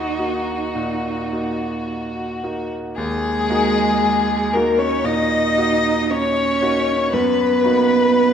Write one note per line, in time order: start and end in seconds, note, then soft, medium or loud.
0.00 2.98 D#2 medium
0.00 0.15 A#3 soft
0.00 0.15 D#4 soft
0.00 2.42 D#4 medium
0.00 0.15 F#4 soft
0.00 2.38 F#4 medium
0.00 2.72 F#4 medium
0.19 0.72 A#3 soft
0.19 0.72 D#4 soft
0.19 0.72 F#4 soft
0.76 1.30 A#2 medium
1.32 2.39 A#3 soft
1.32 2.39 D#4 soft
1.32 2.39 F#4 soft
2.44 2.94 A#3 soft
2.44 2.94 D#4 soft
2.44 2.94 F#4 soft
2.96 3.49 D#2 medium
2.96 4.55 G#3 loud
2.96 4.55 G#4 medium
3.50 4.49 A#3 medium
3.50 4.49 D#4 medium
3.50 4.50 F#4 medium
4.53 4.80 A#3 medium
4.53 5.01 A#3 medium
4.53 5.01 D#4 soft
4.53 5.02 F#4 medium
4.53 4.80 A#4 medium
4.53 4.81 A#4 medium
4.78 5.06 C#4 medium
4.78 5.06 C#5 medium
5.04 5.55 A#2 medium
5.04 6.12 D#4 loud
5.04 6.12 D#5 medium
5.58 6.58 A#3 medium
5.58 6.58 D#4 medium
5.58 6.58 F#4 medium
6.10 7.11 C#4 loud
6.10 7.12 C#5 medium
6.10 7.15 C#5 medium
6.62 7.08 A#3 soft
6.62 7.09 D#4 soft
6.62 7.09 F#4 medium
7.12 7.62 F#2 medium
7.12 8.33 B3 loud
7.12 8.33 B4 medium
7.64 8.33 A#3 medium
7.64 8.33 D#4 soft
7.64 8.33 F#4 medium